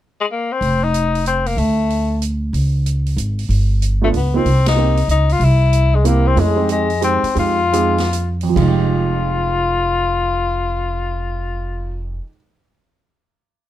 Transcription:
0.21 0.25 G#3 medium
0.31 0.54 A#3 medium
0.52 0.85 C4 medium
0.61 1.53 F1 medium
0.61 open hi-hat soft
0.83 1.27 D#4 medium
0.94 closed hi-hat soft
1.15 open hi-hat soft
1.26 1.48 C4 medium
1.26 closed hi-hat soft
1.46 1.60 A#3 medium
1.46 open hi-hat soft
1.57 2.49 D2 medium
1.57 2.22 A3 medium
1.57 open hi-hat soft
1.90 open hi-hat soft
2.22 closed hi-hat soft
2.53 3.13 C#2 medium
2.53 open hi-hat soft
2.86 closed hi-hat soft
3.06 open hi-hat soft
3.17 3.47 G#1 medium
3.17 closed hi-hat soft
3.39 open hi-hat soft
3.49 4.09 G1 medium
3.49 open hi-hat soft
3.82 closed hi-hat soft
4.02 4.12 A3 medium
4.02 4.09 A3 medium
4.02 4.13 B3 soft
4.02 4.13 D4 medium
4.02 4.13 F4 medium
4.13 4.43 C#2 medium
4.13 4.38 B3 medium
4.13 open hi-hat soft
4.34 4.44 A#3 medium
4.34 4.44 C4 medium
4.34 4.67 C4 medium
4.34 4.45 D#4 soft
4.34 4.45 F4 medium
4.45 5.05 C2 medium
4.45 open hi-hat soft
4.66 5.07 D#4 medium
4.66 snare medium
4.66 ride medium
4.77 4.96 A#3 medium
4.77 4.96 C4 medium
4.77 4.96 D#4 medium
4.77 4.96 G4 medium
4.97 open hi-hat soft
5.08 5.38 C#2 medium
5.08 5.34 D#4 medium
5.08 closed hi-hat soft
5.29 5.45 F4 medium
5.29 open hi-hat soft
5.40 6.32 C2 medium
5.40 open hi-hat soft
5.44 5.96 E4 medium
5.73 closed hi-hat soft
5.95 6.08 G#3 medium
6.04 6.37 A#3 medium
6.04 6.29 A#3 medium
6.04 6.37 C4 medium
6.04 6.35 E4 medium
6.04 6.37 G4 medium
6.04 closed hi-hat soft
6.28 6.41 C4 medium
6.35 7.20 F2 medium
6.35 6.55 A3 medium
6.35 6.55 C#4 medium
6.35 6.55 E4 soft
6.35 6.56 G#4 medium
6.35 open hi-hat soft
6.40 6.70 G#3 medium
6.56 6.85 G#3 medium
6.56 6.85 C4 medium
6.56 6.86 D#4 medium
6.56 6.86 G4 medium
6.69 7.01 G#3 medium
6.69 closed hi-hat soft
6.90 open hi-hat soft
7.01 7.21 G#3 medium
7.01 7.21 C4 medium
7.01 7.35 C4 medium
7.01 7.22 D#4 medium
7.01 7.22 G4 medium
7.01 closed hi-hat soft
7.23 muted upright bass stroke soft
7.23 open hi-hat soft
7.35 8.52 F2 medium
7.35 7.57 G#3 soft
7.35 7.57 C4 soft
7.35 7.57 D#4 soft
7.35 7.57 G4 medium
7.35 open hi-hat soft
7.39 8.37 F4 medium
7.73 7.95 G#3 medium
7.73 7.95 C4 medium
7.73 7.95 D#4 medium
7.73 7.96 G#4 medium
7.73 closed hi-hat soft
7.98 snare soft
7.98 open hi-hat soft
8.13 closed hi-hat soft
8.41 12.10 F2 medium
8.41 open hi-hat soft
8.49 12.16 F3 medium
8.56 12.18 F1 medium
8.56 12.22 G#3 medium
8.56 12.06 F4 medium
8.56 kick medium
8.56 crash medium
8.62 12.28 D#4 medium
8.68 12.34 G4 medium

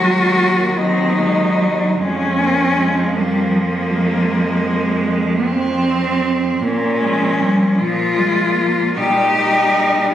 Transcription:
0.00 1.95 D#2 medium
0.00 0.80 F#3 medium
0.00 0.41 G#3 medium
0.00 0.80 F#4 loud
0.40 0.81 A#3 medium
0.79 1.98 F#3 medium
0.79 1.21 C4 medium
0.79 1.99 D#4 loud
1.20 1.62 G#3 medium
1.61 2.02 F#3 medium
1.98 6.59 F2 medium
1.98 6.58 F3 medium
1.98 2.39 G#3 medium
1.98 3.16 C#4 loud
2.39 2.76 A#3 medium
2.77 3.18 G#3 medium
3.15 3.55 G3 medium
3.15 6.24 A#3 medium
3.53 3.91 F3 medium
3.89 4.28 G#3 medium
4.29 5.46 G#3 medium
5.45 6.64 C4 medium
6.62 7.65 A#2 medium
6.62 7.04 A#3 medium
6.62 7.80 C#4 loud
7.01 8.16 F3 medium
7.01 7.41 G#3 medium
7.39 7.78 G3 medium
7.79 8.82 A#2 medium
7.79 8.18 F3 medium
7.79 8.98 F4 loud
8.17 8.95 F3 medium
8.17 8.56 G#3 medium
8.55 8.98 A#3 medium
8.96 9.99 A#2 medium
8.96 9.35 G3 medium
8.96 10.14 D#4 medium
8.96 10.12 G4 loud
9.36 10.14 G3 medium

